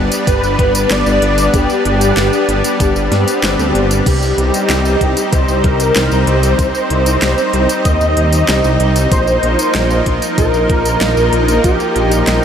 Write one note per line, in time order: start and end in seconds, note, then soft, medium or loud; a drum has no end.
0.00 9.07 G3 medium
0.00 4.02 B3 medium
0.00 4.02 D4 loud
0.12 closed hi-hat medium
0.12 tambourine medium
0.27 0.41 G1 medium
0.27 0.92 B4 loud
0.27 kick loud
0.27 closed hi-hat medium
0.27 tambourine medium
0.43 0.57 G1 loud
0.43 tambourine soft
0.59 0.86 G1 medium
0.59 kick loud
0.59 closed hi-hat medium
0.75 closed hi-hat medium
0.75 tambourine medium
0.91 1.04 G1 medium
0.91 1.56 D5 loud
0.91 snare loud
0.91 clap loud
0.91 closed hi-hat medium
0.91 tambourine medium
1.06 1.20 G1 loud
1.06 tambourine soft
1.22 1.49 G1 medium
1.22 closed hi-hat medium
1.38 closed hi-hat medium
1.38 tambourine medium
1.54 1.67 G1 medium
1.54 3.43 G4 loud
1.54 kick loud
1.54 closed hi-hat medium
1.54 tambourine soft
1.70 tambourine soft
1.85 2.12 G1 medium
1.85 closed hi-hat medium
2.01 closed hi-hat medium
2.01 tambourine medium
2.17 2.30 G1 loud
2.17 snare loud
2.17 clap loud
2.17 closed hi-hat medium
2.17 tambourine medium
2.33 tambourine soft
2.49 2.62 G1 medium
2.49 closed hi-hat medium
2.64 closed hi-hat medium
2.64 tambourine medium
2.80 2.94 G1 medium
2.80 kick loud
2.80 closed hi-hat medium
2.80 tambourine medium
2.80 swell medium
2.96 3.09 G1 medium
2.96 tambourine soft
3.12 3.25 G2 medium
3.12 snare medium
3.12 closed hi-hat medium
3.28 closed hi-hat medium
3.28 tambourine medium
3.43 3.57 G1 medium
3.43 snare loud
3.43 clap loud
3.43 closed hi-hat loud
3.43 tambourine medium
3.59 3.72 D2 medium
3.59 tambourine soft
3.75 4.02 G1 medium
3.75 closed hi-hat medium
3.91 closed hi-hat medium
3.91 tambourine medium
4.06 4.33 C2 loud
4.06 9.08 C4 medium
4.06 12.45 D#4 medium
4.06 5.34 G4 loud
4.06 kick loud
4.06 closed hi-hat loud
4.06 tambourine soft
4.06 crash medium
4.22 tambourine soft
4.38 4.51 C2 loud
4.38 closed hi-hat medium
4.54 closed hi-hat medium
4.54 tambourine medium
4.69 4.96 C2 loud
4.69 snare loud
4.69 clap loud
4.69 closed hi-hat loud
4.69 tambourine soft
4.85 tambourine soft
5.01 5.15 C2 medium
5.01 kick medium
5.01 closed hi-hat medium
5.17 closed hi-hat medium
5.17 tambourine medium
5.32 5.46 C2 medium
5.32 5.65 C5 loud
5.32 kick loud
5.32 closed hi-hat medium
5.32 tambourine soft
5.48 5.62 C2 loud
5.48 tambourine soft
5.64 5.91 C2 medium
5.64 6.28 A#4 loud
5.64 kick loud
5.64 closed hi-hat medium
5.80 closed hi-hat medium
5.80 tambourine medium
5.96 6.09 C2 loud
5.96 snare loud
5.96 clap loud
5.96 closed hi-hat loud
5.96 tambourine soft
6.12 6.25 C2 loud
6.12 tambourine soft
6.27 6.54 C2 medium
6.27 7.21 C5 loud
6.27 closed hi-hat medium
6.43 closed hi-hat medium
6.43 tambourine medium
6.59 6.72 C2 medium
6.59 kick loud
6.59 closed hi-hat loud
6.59 tambourine soft
6.75 tambourine soft
6.90 7.17 C2 medium
6.90 closed hi-hat medium
7.06 closed hi-hat medium
7.06 tambourine medium
7.21 7.36 C2 loud
7.21 7.81 C5 loud
7.21 snare loud
7.21 clap loud
7.21 closed hi-hat loud
7.21 tambourine soft
7.38 tambourine soft
7.53 7.67 C2 medium
7.53 closed hi-hat medium
7.69 closed hi-hat medium
7.69 tambourine medium
7.85 7.99 D#2 medium
7.85 8.76 D#5 loud
7.85 kick loud
7.85 closed hi-hat loud
7.85 tambourine soft
8.01 8.15 D#2 loud
8.01 tambourine soft
8.17 8.44 D#2 medium
8.17 closed hi-hat medium
8.33 closed hi-hat medium
8.33 tambourine medium
8.49 8.62 C2 medium
8.49 snare loud
8.49 clap loud
8.49 closed hi-hat loud
8.49 tambourine soft
8.64 8.78 C2 loud
8.64 tambourine soft
8.80 9.07 C2 loud
8.80 closed hi-hat medium
8.96 closed hi-hat medium
8.96 tambourine medium
9.12 9.39 A#1 loud
9.12 12.45 F3 medium
9.12 12.45 A#3 medium
9.12 10.02 C5 loud
9.12 kick loud
9.12 closed hi-hat medium
9.12 tambourine soft
9.27 tambourine soft
9.43 9.57 A#1 loud
9.43 closed hi-hat medium
9.59 closed hi-hat medium
9.59 tambourine medium
9.75 10.02 A#1 loud
9.75 snare loud
9.75 clap medium
9.75 closed hi-hat medium
9.75 tambourine soft
9.91 tambourine soft
10.06 10.20 A#1 medium
10.06 kick medium
10.06 closed hi-hat medium
10.22 closed hi-hat medium
10.22 tambourine medium
10.38 10.51 A#1 medium
10.38 11.60 A#4 loud
10.38 kick loud
10.38 closed hi-hat medium
10.38 tambourine soft
10.54 10.67 A#1 loud
10.54 tambourine soft
10.69 10.96 A#1 medium
10.69 kick loud
10.69 closed hi-hat medium
10.86 closed hi-hat medium
10.86 tambourine medium
11.01 11.15 A#1 medium
11.01 snare loud
11.01 clap loud
11.01 closed hi-hat loud
11.01 tambourine soft
11.17 11.30 A#1 loud
11.17 tambourine soft
11.33 11.60 A#1 medium
11.33 closed hi-hat medium
11.48 closed hi-hat medium
11.48 tambourine medium
11.64 11.78 A#1 medium
11.64 12.45 G4 loud
11.64 kick loud
11.64 closed hi-hat medium
11.64 tambourine soft
11.80 tambourine soft
11.96 12.23 A#1 medium
11.96 closed hi-hat medium
12.12 closed hi-hat medium
12.12 tambourine medium
12.27 12.41 A#1 loud
12.27 snare loud
12.27 clap medium
12.27 closed hi-hat medium
12.27 tambourine soft